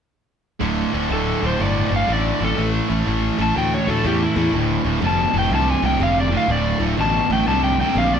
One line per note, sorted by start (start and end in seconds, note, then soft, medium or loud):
0.60 0.83 D1 medium
0.60 0.91 D2 medium
0.60 0.92 A2 medium
0.60 0.92 D3 medium
0.92 1.05 D1 medium
0.92 1.08 D2 medium
0.92 1.08 A2 medium
0.92 1.09 D3 medium
1.09 1.33 D1 medium
1.09 1.40 D2 medium
1.09 1.40 A2 medium
1.09 1.41 D3 medium
1.13 1.44 A4 medium
1.41 1.54 D1 medium
1.41 1.57 D2 medium
1.41 1.57 A2 medium
1.41 1.58 D3 medium
1.46 1.60 C5 medium
1.58 1.82 G1 medium
1.58 1.89 D2 medium
1.58 1.89 A2 medium
1.58 1.90 D3 medium
1.63 1.93 D5 medium
1.90 2.03 G1 medium
1.90 2.06 D2 medium
1.90 2.07 A2 medium
1.90 2.07 D3 medium
1.96 2.10 F5 medium
2.08 2.31 A1 medium
2.08 2.39 D2 medium
2.08 2.40 A2 medium
2.08 2.40 D3 medium
2.13 2.43 D5 medium
2.40 2.53 A1 medium
2.40 2.56 D2 medium
2.40 2.56 A2 medium
2.40 2.57 D3 medium
2.44 2.69 A4 medium
2.57 2.80 A1 medium
2.57 2.87 A2 medium
2.57 2.88 E3 medium
2.57 2.88 A3 medium
2.89 3.02 A1 medium
2.89 3.04 A2 medium
2.89 3.05 E3 medium
2.89 3.05 A3 medium
3.05 3.29 A1 medium
3.05 3.36 A2 medium
3.05 3.37 E3 medium
3.05 3.38 A3 medium
3.38 3.51 A1 medium
3.38 3.54 A2 medium
3.38 3.54 E3 medium
3.38 3.55 A3 medium
3.42 3.57 A5 medium
3.55 3.78 D2 medium
3.55 3.86 A2 medium
3.55 3.86 E3 medium
3.55 3.87 A3 medium
3.55 3.73 G5 medium
3.74 3.89 C#5 medium
3.87 3.99 D2 medium
3.87 4.03 A2 medium
3.87 4.03 E3 medium
3.87 4.04 A3 medium
3.87 4.05 A4 medium
4.04 4.27 E2 medium
4.04 4.35 A2 medium
4.04 4.35 E3 medium
4.04 4.36 A3 medium
4.04 4.22 G4 medium
4.23 4.54 E4 loud
4.36 4.48 E2 medium
4.36 4.52 A2 medium
4.36 4.52 E3 medium
4.36 4.53 A3 medium
4.53 4.76 D1 medium
4.53 4.82 D2 medium
4.53 4.82 A2 medium
4.84 4.97 D1 medium
4.84 5.00 D2 medium
4.84 5.00 A2 medium
5.01 5.25 F1 medium
5.01 5.30 D2 medium
5.01 5.31 B2 medium
5.07 5.36 A5 medium
5.33 5.46 F1 medium
5.33 5.49 D2 medium
5.33 5.49 A2 medium
5.39 5.53 G5 medium
5.50 5.73 C2 medium
5.50 5.79 D2 medium
5.50 5.80 C3 medium
5.55 5.69 A5 medium
5.71 5.85 G#5 medium
5.82 5.95 C2 medium
5.82 5.98 D2 medium
5.82 5.98 C3 medium
5.82 6.01 G5 medium
5.99 6.35 F1 medium
5.99 6.28 D2 medium
5.99 6.29 C3 medium
5.99 6.18 F5 medium
6.20 6.34 D5 medium
6.30 6.47 D2 medium
6.30 6.47 A2 medium
6.37 6.51 F5 medium
6.48 6.71 D1 medium
6.48 6.78 D2 medium
6.48 6.78 A2 medium
6.48 6.81 D5 loud
6.79 6.93 D1 medium
6.79 6.96 D2 medium
6.79 6.96 A2 medium
6.97 7.20 A1 medium
6.97 7.26 D2 medium
6.97 7.26 B2 medium
6.97 7.31 A5 medium
7.29 7.42 A1 medium
7.29 7.45 D2 medium
7.29 7.45 A2 medium
7.29 7.48 G5 medium
7.46 7.82 C2 medium
7.46 7.75 D2 medium
7.46 7.75 C3 medium
7.46 7.63 A5 medium
7.64 7.80 G5 medium
7.79 7.94 D2 medium
7.79 7.94 C3 medium
7.79 7.96 G5 medium
7.95 8.18 A#1 medium
7.95 8.20 D2 medium
7.95 8.20 C3 medium
7.95 8.13 F5 medium
8.14 8.20 D5 medium